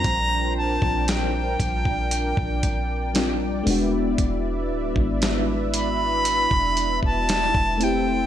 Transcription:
Already playing: G3 C4 D4 F4 A#4 C5 G5 A#5
0.04 A#1, kick, closed hi-hat
0.57 A5
0.82 A#1, kick
1.08 G5, snare, closed hi-hat
1.60 A#1 D5, kick, closed hi-hat
1.85 kick
2.11 closed hi-hat
2.37 A#1, kick
2.63 kick, closed hi-hat
3.14 G3 C4 D4 F4, snare, closed hi-hat
3.63 E1 G#3 B3 E4 B4 E5, open hi-hat
3.68 D4 F#4
4.18 E1, kick, closed hi-hat
4.70 D1
4.96 G#1, kick
5.22 snare, closed hi-hat
5.74 B5, closed hi-hat
6.25 closed hi-hat
6.51 E1, kick
6.77 closed hi-hat
7.03 E1 A5, kick
7.29 snare, closed hi-hat
7.55 E1, kick
7.77 A3 C4 A4 C5 G5, closed hi-hat
7.82 E4 G4 G5

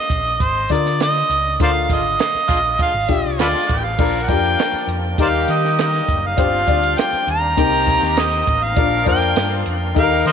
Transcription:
Already playing: D#5
0.10 A#1, kick, closed hi-hat
0.40 G#1 C5, kick, closed hi-hat
0.69 D3 D4 F4 A#4 D5, kick, snare, closed hi-hat
0.86 snare
1.00 D#5, snare, closed hi-hat
1.29 C#2, closed hi-hat
1.59 D2 D3 F4 A#4 C5 D5 F5, kick, closed hi-hat
1.84 F5
1.89 G#1 D3 G#3 F4, kick, closed hi-hat
1.94 D#5
2.19 snare, closed hi-hat
2.35 muted picked electric bass stroke
2.48 A#1 D3 G#3 F4, kick, closed hi-hat
2.79 D3 G#3 F4 F5, kick, closed hi-hat
2.94 G#1
3.08 A#1 D4 F4 G4, kick, snare, closed hi-hat
3.25 C2
3.39 D2 D3 G#3 F4 A4 B4 D5, snare, closed hi-hat
3.69 A1, kick, closed hi-hat
3.78 G5
3.84 F5
3.98 A#1 F3 A#3 D4 F4 A#4, kick, crash
4.23 F#5
4.29 F2 D4 F4 G4 G5, kick, closed hi-hat
4.45 closed hi-hat
4.59 snare, closed hi-hat
4.73 muted picked electric bass stroke
4.88 F2, closed hi-hat
5.18 D#2 D#3 G3 A#3 D#4 G4 A#4 C5 D5 F5, kick, closed hi-hat
5.48 D#3 D#5, snare, closed hi-hat
5.65 snare
5.78 D#5, snare, closed hi-hat
5.93 snare, closed hi-hat
6.08 F#1, kick, closed hi-hat
6.26 F5
6.36 G1 D3 C4 D4 F4 G4 C5, kick, closed hi-hat
6.67 D2 D4 G4 D5, kick, closed hi-hat
6.83 closed hi-hat
6.98 G5, snare, closed hi-hat
7.13 muted picked electric bass stroke
7.27 D#2 A#5, closed hi-hat
7.57 C2 D#3 A#3 C4 D#4 G4 A#4, kick, closed hi-hat
7.86 kick, snare, closed hi-hat
8.02 D#2, snare
8.17 D#5, snare, closed hi-hat
8.32 closed hi-hat
8.47 A1, kick, closed hi-hat
8.63 F5
8.76 A#1 F3 D4 F4 A#4, kick, closed hi-hat
9.05 F2 D4 F4 C5 G5, kick, closed hi-hat
9.22 closed hi-hat
9.36 G2, snare, closed hi-hat
9.66 F2, closed hi-hat
9.94 D#2 G3 D#4 G4 A4 A#4, kick, closed hi-hat
9.98 F5
10.03 A#4
10.25 D#3 A#4 C5 D#5, snare, closed hi-hat

